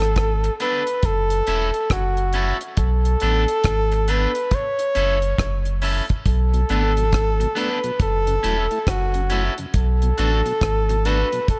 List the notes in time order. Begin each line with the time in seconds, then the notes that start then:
Already playing: G#1 A4
0.00 cross-stick, closed hi-hat
0.16 kick, cross-stick, closed hi-hat
0.44 muted clean electric guitar stroke, closed hi-hat
0.60 B3 D4 A4 B4, closed hi-hat
0.87 closed hi-hat
1.03 F#1 A4, kick, closed hi-hat
1.30 closed hi-hat
1.47 E1 C#4 E4 A4, closed hi-hat
1.74 closed hi-hat
1.90 F#1 F#4, kick, cross-stick, closed hi-hat
2.17 closed hi-hat
2.33 C#4 E4 A4, closed hi-hat
2.61 closed hi-hat
2.77 B1 A4, kick, closed hi-hat
3.05 closed hi-hat
3.20 A1 B3 D4 A4, closed hi-hat
3.48 closed hi-hat
3.64 G#1, kick, cross-stick, closed hi-hat
3.92 muted clean electric guitar stroke, closed hi-hat
4.08 B3 D4 A4 B4, closed hi-hat
4.35 closed hi-hat
4.51 C#5, kick, closed hi-hat
4.79 closed hi-hat
4.95 F#1 C#4 E4 A4, closed hi-hat
5.22 closed hi-hat
5.38 F#1, kick, cross-stick, closed hi-hat
5.65 closed hi-hat
5.82 C#4 E4 A4, open hi-hat
6.09 kick, closed hi-hat
6.26 B1 A4, kick, closed hi-hat
6.53 B2 F#3, closed hi-hat
6.69 G#1 A3 B3 D4 A4, closed hi-hat
6.97 B2 F#3, closed hi-hat
7.13 kick, cross-stick, closed hi-hat
7.40 B2 F#3, muted clean electric guitar stroke, closed hi-hat
7.55 A3 B3 D4 A4 B4, closed hi-hat
7.84 B2 F#3, closed hi-hat
8.00 F#1 A4, kick, closed hi-hat
8.27 F#2 C#3, closed hi-hat
8.43 E1 F#3 A3 C#4 E4 A4, closed hi-hat
8.71 A3 E4, closed hi-hat
8.87 F#1 F#4, kick, cross-stick, closed hi-hat
9.14 F#2 C#3, closed hi-hat
9.30 F#3 A3 C#4 E4 A4, closed hi-hat
9.58 F#2 C#3, closed hi-hat
9.74 B1 A4, kick, closed hi-hat
10.02 B2 F#3, closed hi-hat
10.18 A1 A3 B3 D4 F#4 A4, closed hi-hat
10.45 B2 F#3, closed hi-hat
10.61 G#1, kick, cross-stick, closed hi-hat
10.89 B2 F#3, muted clean electric guitar stroke, closed hi-hat
11.05 A3 B3 D4 F#4 A4 B4, closed hi-hat
11.32 B2 F#3, closed hi-hat
11.48 A4, kick, closed hi-hat